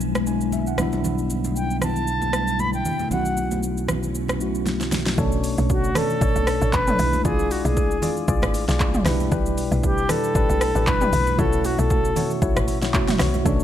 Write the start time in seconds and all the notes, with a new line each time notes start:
Already playing: B1 D3 F3 G#3 B3 D4 E4
0.01 shaker
0.15 cross-stick, high conga, shaker
0.26 G#3 D4 E4 G#5, shaker
0.41 shaker
0.52 E5, high conga, shaker
0.67 F#5, shaker
0.76 B1 B2 G3 A3 D4, cross-stick, high conga, low conga, shaker
0.82 E4
0.92 high conga, shaker
1.04 low conga, shaker
1.18 shaker
1.30 high conga, shaker
1.44 high conga, shaker
1.56 G5, shaker
1.70 shaker
1.82 A5, cross-stick, low conga, shaker
1.96 shaker
2.07 shaker
2.22 high conga, shaker
2.33 cross-stick, shaker
2.48 shaker
2.59 B5, high conga, shaker
2.73 G5, shaker
2.85 high conga, low conga, shaker
2.99 high conga, shaker
3.08 B1 B2 F#3 A3 C#4 F#5, low conga, shaker
3.13 E4 F#4
3.25 shaker
3.37 high conga, shaker
3.51 high conga, shaker
3.63 shaker
3.77 shaker
3.88 cross-stick, low conga, shaker
4.03 shaker
4.15 shaker
4.28 cross-stick, high conga, shaker
4.39 B2 A3 C#4 E4 F#4, shaker
4.55 shaker
4.66 snare, high conga, shaker
4.81 snare, shaker
4.92 snare, high conga, low conga, shaker
5.06 snare, high conga, shaker
5.16 B1 B2 A3 C#4 D4 A4 C#5, kick, low conga, shaker
5.21 D4
5.32 shaker
5.44 open hi-hat, shaker
5.58 B1, high conga, shaker
5.70 F#4, kick, shaker
5.84 shaker
5.95 D4 A4 C#5, cross-stick, open hi-hat, low conga, shaker
6.10 shaker
6.21 A1 D4 A4 C#5, kick, shaker
6.36 B1, high conga, shaker
6.47 cross-stick, open hi-hat, shaker
6.62 A1 D4 A4 C#5, shaker
6.73 B4, kick, clap, high conga, shaker
6.87 D4 A4 C#5, mid tom, shaker
6.97 B1 G#3 D4, open hi-hat, high conga, low conga, shaker
7.02 E4
7.13 high conga, shaker
7.25 B1 F4 G#4 D5, kick, low conga, shaker
7.39 shaker
7.51 F#4, open hi-hat, shaker
7.65 B1 G#4, high conga, shaker
7.77 kick, shaker
7.91 shaker
8.02 F4 G#4 D5, open hi-hat, low conga, shaker
8.17 shaker
8.28 B1 F4 G#4 D5, kick, shaker
8.42 G#1, cross-stick, high conga, shaker
8.54 open hi-hat, shaker
8.68 B1 F4 G#4 D5, snare, shaker
8.80 kick, clap, high conga, shaker
8.94 mid tom, shaker
9.03 B1 B2 G3 D4 G4 B4, cross-stick, snare, open hi-hat, high conga, low conga, shaker
9.09 E4
9.20 high conga, shaker
9.31 B1 D4 G4 B4, kick, low conga, shaker
9.46 shaker
9.58 open hi-hat, shaker
9.72 B1, high conga, shaker
9.83 G4, kick, shaker
9.98 shaker
10.09 D4 G4 A4 B4, cross-stick, open hi-hat, low conga, shaker
10.24 shaker
10.35 A1 D4 G4 B4, kick, shaker
10.49 B1, high conga, shaker
10.61 cross-stick, open hi-hat, shaker
10.75 A1 D4 G4 B4, shaker
10.86 B2 G3 D4 E4 B4, kick, clap, high conga, shaker
11.01 D4 G4 B4, mid tom, shaker
11.13 B1, open hi-hat, high conga, low conga, shaker
11.27 high conga, shaker
11.36 B1 B2 A3 C#4 E4 F#4 A4 C#5, kick, low conga, shaker
11.40 E4 F4
11.48 F#4
11.53 shaker
11.65 F#4, open hi-hat, high conga, shaker
11.79 B1 A4, high conga, shaker
11.90 kick, shaker
12.05 shaker
12.16 E4 F#4 C#5, open hi-hat, low conga, shaker
12.30 shaker
12.42 B1 E4 F#4 C#5, kick, shaker
12.56 A1, cross-stick, high conga, shaker
12.68 open hi-hat, shaker
12.82 B1 E4 F#4 C#5, snare, shaker
12.93 B2 A3 C#4 E4 F#4 E5, kick, clap, high conga, shaker
13.08 snare, mid tom, shaker
13.19 B1 E4 F#4 C#5, cross-stick, snare, open hi-hat, high conga, low conga, shaker
13.34 high conga, shaker
13.43 B1 B2 A3 C#4 D4 A4 C#5, kick, low conga, shaker
13.49 D4
13.60 shaker